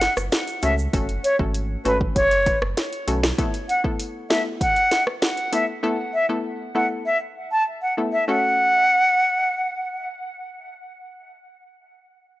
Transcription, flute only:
0.00 0.14 F#5 loud
0.63 0.75 E5 medium
1.24 1.36 C#5 medium
1.85 1.97 B4 medium
2.16 2.59 C#5 loud
3.69 3.81 F#5 medium
4.30 4.42 E5 medium
4.61 5.04 F#5 loud
5.53 5.65 E5 medium
6.14 6.26 E5 medium
6.75 6.87 F#5 medium
7.06 7.18 E5 medium
7.52 7.64 A5 medium
7.82 7.94 F#5 medium
8.13 8.25 E5 medium
8.28 10.08 F#5 loud

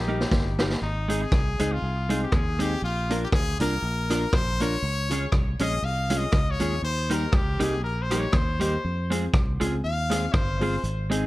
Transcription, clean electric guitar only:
0.08 0.22 G3 medium
0.08 0.22 A#3 medium
0.08 0.23 D#4 medium
0.08 0.23 G4 medium
0.59 0.72 G3 medium
0.59 0.73 A#3 medium
0.59 0.73 D#4 medium
0.59 0.73 G4 medium
1.08 1.22 G#3 medium
1.08 1.23 C4 medium
1.08 1.23 D#4 loud
1.08 1.23 G#4 medium
1.60 1.73 G#3 medium
1.60 1.73 C4 medium
1.60 1.74 D#4 medium
1.60 1.74 G#4 loud
2.09 2.23 G#3 medium
2.09 2.23 C4 medium
2.09 2.23 D#4 medium
2.09 2.23 G#4 medium
2.59 2.73 G#3 medium
2.59 2.73 C4 medium
2.59 2.73 D#4 medium
2.59 2.74 G#4 medium
3.11 3.24 A#3 medium
3.11 3.24 D4 medium
3.11 3.24 F4 medium
3.11 3.24 A#4 medium
3.61 3.74 A#3 medium
3.61 3.74 D4 loud
3.61 3.74 F4 medium
3.61 3.74 A#4 loud
4.10 4.24 A#3 medium
4.10 4.24 D4 medium
4.10 4.24 F4 medium
4.10 4.24 A#4 medium
4.61 4.74 A#3 medium
4.61 4.74 D4 medium
4.61 4.75 F4 medium
4.61 4.75 A#4 medium
5.12 5.24 G#3 medium
5.12 5.25 C#4 medium
5.12 5.25 F4 medium
5.12 5.25 G#4 medium
5.60 5.74 G#3 medium
5.60 5.74 C#4 medium
5.60 5.74 F4 medium
5.60 5.74 G#4 medium
6.10 6.24 G#3 medium
6.10 6.24 C#4 medium
6.10 6.24 F4 medium
6.10 6.24 G#4 medium
6.60 6.74 G#3 medium
6.60 6.74 C#4 medium
6.60 6.74 F4 medium
6.60 6.74 G#4 medium
7.10 7.24 G3 medium
7.10 7.24 A#3 medium
7.10 7.24 D#4 medium
7.10 7.24 G4 medium
7.59 7.74 G3 medium
7.59 7.74 A#3 medium
7.59 7.74 D#4 medium
7.59 7.74 G4 medium
8.11 8.24 G3 medium
8.11 8.24 A#3 loud
8.11 8.25 D#4 medium
8.11 8.25 G4 loud
8.60 8.74 G3 medium
8.60 8.74 A#3 medium
8.60 8.74 D#4 medium
8.60 8.74 G4 medium
9.10 9.24 G#3 medium
9.10 9.25 C4 medium
9.10 9.25 F4 medium
9.10 9.25 G#4 medium
9.60 9.74 G#3 medium
9.60 9.74 C4 medium
9.60 9.75 F4 medium
9.60 9.75 G#4 medium
10.10 10.24 G#3 medium
10.10 10.25 C4 medium
10.10 10.25 F4 medium
10.10 10.25 G#4 medium
10.61 10.75 G#3 medium
10.61 10.75 C4 medium
10.61 10.75 F4 medium
10.61 10.75 G#4 medium
11.10 11.24 G#3 medium
11.10 11.25 C4 medium
11.10 11.25 D#4 medium
11.10 11.25 G#4 loud

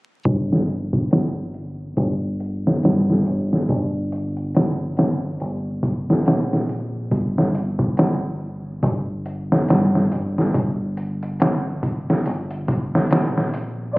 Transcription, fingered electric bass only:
0.26 1.94 G1 medium
1.97 2.80 G1 medium
2.84 3.22 G2 medium
3.27 3.65 G1 medium
3.70 5.37 G1 medium
5.41 6.23 G1 medium
6.26 7.09 A#1 medium
7.12 8.80 G1 medium
8.83 9.65 G1 medium
9.69 10.08 G2 medium
10.12 10.51 G1 medium
10.55 12.23 G1 medium
12.26 13.08 G1 medium
13.12 13.94 A#1 medium

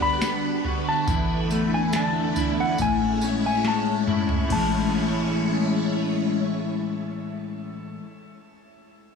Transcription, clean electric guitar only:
0.00 1.08 G3 medium
0.00 0.21 B3 medium
0.00 1.16 D4 medium
0.00 0.63 F#4 medium
0.22 1.16 B3 medium
0.65 1.08 F#4 medium
1.07 2.79 E2 loud
1.07 2.35 E4 medium
1.50 3.64 A3 medium
1.93 2.88 D4 medium
2.36 4.07 E4 medium
2.79 4.46 A2 medium
3.22 4.55 C#4 medium
3.65 4.53 G#3 medium
4.07 4.58 E4 medium
4.47 7.97 A2 medium
4.47 8.01 E3 medium
4.53 8.03 G#3 medium
4.53 8.06 C#4 medium
4.58 8.08 E4 loud

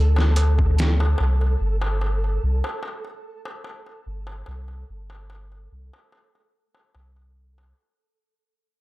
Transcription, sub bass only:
0.00 1.15 D2 medium
1.20 1.56 C2 medium
1.61 2.38 G1 medium
2.43 2.62 C2 medium
4.06 4.43 G1 medium
4.48 4.84 C2 loud
4.90 5.67 G1 medium
5.72 5.90 C2 medium
6.95 7.73 C2 medium

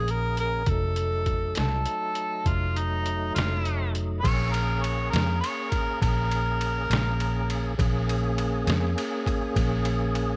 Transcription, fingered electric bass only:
0.00 0.64 A#1 medium
0.67 1.52 F1 medium
1.57 1.84 C2 medium
2.46 3.31 F1 medium
3.36 4.20 F1 medium
4.24 5.09 A#1 medium
5.13 5.40 F2 medium
6.02 6.86 A#1 medium
6.90 7.74 A#1 medium
7.79 8.63 A#1 loud
8.67 8.94 F2 medium
9.56 10.37 A#1 medium

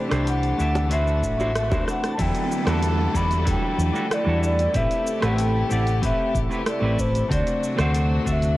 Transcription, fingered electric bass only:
0.12 0.52 C2 medium
0.60 1.24 D2 medium
1.24 1.71 A1 medium
1.71 1.82 D2 medium
2.19 2.30 E2 medium
2.67 3.07 E2 loud
3.15 3.55 E2 medium
3.78 3.90 E2 medium
4.26 4.66 E2 medium
4.75 4.86 A1 medium
5.23 5.62 A1 medium
5.71 6.11 A1 medium
6.35 6.46 A1 medium
6.82 7.22 A1 medium
7.31 7.41 D2 loud
7.79 8.18 D2 medium
8.27 8.57 D2 medium

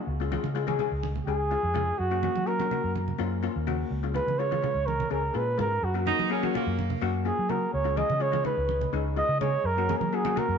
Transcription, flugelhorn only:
1.27 2.00 G#4 medium
1.99 2.49 F#4 medium
2.47 2.95 A#4 medium
4.15 4.40 B4 medium
4.39 4.88 C#5 medium
4.87 5.11 A#4 loud
5.12 5.38 A#4 medium
5.36 5.59 B4 medium
5.60 5.86 A#4 medium
5.84 6.07 F#4 medium
7.26 7.51 G#4 medium
7.50 7.73 A#4 medium
7.73 7.99 C#5 medium
7.98 8.24 D#5 medium
8.22 8.45 C#5 loud
8.46 8.90 B4 medium
9.18 9.40 D#5 loud
9.41 9.67 C#5 loud
9.66 9.97 A#4 loud
9.99 10.16 A#4 medium
10.15 10.40 G#4 medium
10.39 10.58 A#4 medium

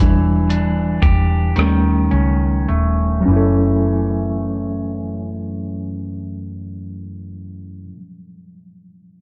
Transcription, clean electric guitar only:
0.00 1.55 E3 medium
0.50 1.67 D4 medium
1.02 1.67 G4 medium
1.56 3.27 D#3 medium
2.11 3.36 C#4 soft
2.68 3.32 A3 soft
3.22 7.90 F#2 medium
3.28 7.96 E3 medium
3.33 8.01 A3 medium
3.33 8.05 C#4 medium

